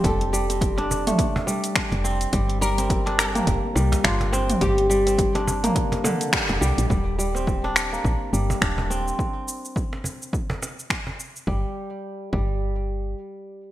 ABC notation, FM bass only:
X:1
M:4/4
L:1/16
Q:"Swing 16ths" 1/4=105
K:Eblyd
V:1 name="FM bass" clef=bass
F,,,6- F,,, z6 F,,,2 z | G,,,6- G,,, z F,,, z C,, z G,,,3 z | G,,,6- G,,, z6 F,,, C,, B,,, | E,,,6- E,,, z B,,, z G,,, z E,,,3 z |
z16 | G,,, z4 z G,,,6 z4 |]